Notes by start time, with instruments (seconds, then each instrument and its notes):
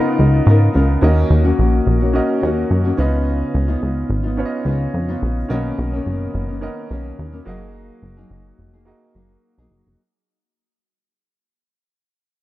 Already playing: nylon-string guitar C#3 B3 F4 A#4, upright piano B3 F4 A#4 D#5, clean electric guitar D#4
0.19 analog synth bass C#2
0.45 analog synth bass G#2, nylon-string guitar C#3 B3 F4 A#4
0.73 analog synth bass C#2, nylon-string guitar C#3 B3 F4 A#4
1.01 analog synth bass D#2, nylon-string guitar D#3 A#3 C#4 F#4, upright piano C#4 F#4 A#4 D#5
1.30 analog synth bass D#2
1.44 nylon-string guitar D#3 A#3 C#4 F#4
1.59 analog synth bass A#1
1.87 analog synth bass A#1
2.00 nylon-string guitar A#3 C#4 F#4
2.13 upright piano C#4 F#4 A#4 D#5
2.41 analog synth bass D#2, nylon-string guitar D#3 A#3 C#4 F#4
2.71 analog synth bass F#2
2.84 nylon-string guitar D#3 A#3 C#4 F#4
2.97 analog synth bass C#2, nylon-string guitar C#3 B3 D#4 F4, upright piano C#4 F4 B4 D#5
3.54 analog synth bass C#2
3.68 nylon-string guitar C#3 B3 D#4 F4
3.82 analog synth bass C#2
4.10 analog synth bass G#1
4.23 nylon-string guitar B3 D#4 F4
4.37 upright piano C#4 F4 B4 C#5
4.46 upright piano D#5
4.64 analog synth bass C#2, nylon-string guitar C#3 B3 D#4
4.69 nylon-string guitar F4
4.94 analog synth bass F2
5.09 nylon-string guitar C#3 B3 D#4 F4
5.22 analog synth bass A#1
5.48 analog synth bass B1, nylon-string guitar B2 D#3 A#3 C#4, upright piano B3 C#4 A#4 D#5
5.78 analog synth bass B1
5.93 nylon-string guitar B2 D#3 A#3 C#4
6.06 analog synth bass F#1
6.34 analog synth bass F#1
6.49 nylon-string guitar D#3 A#3 C#4
6.61 upright piano B3 C#4 A#4 D#5
6.89 analog synth bass B1, nylon-string guitar B2 D#3 A#3 C#4
7.19 analog synth bass D#2
7.33 nylon-string guitar B2 D#3 A#3 C#4
7.45 analog synth bass F#1, nylon-string guitar F#3 A#3 D#4 G#4, upright piano A#3 F#4 G#4 D#5
8.02 analog synth bass F#1
8.17 nylon-string guitar F#3 A#3 D#4 G#4
8.30 analog synth bass F#1
8.58 analog synth bass F1
8.73 nylon-string guitar A#3 D#4 G#4
8.85 upright piano A#3 F#4 G#4 D#5
9.14 analog synth bass F#1, nylon-string guitar F#3 A#3 D#4 G#4
9.58 analog synth bass B1, nylon-string guitar F#3 A#3 D#4 G#4
9.71 analog synth bass F#1
9.87 analog synth bass F1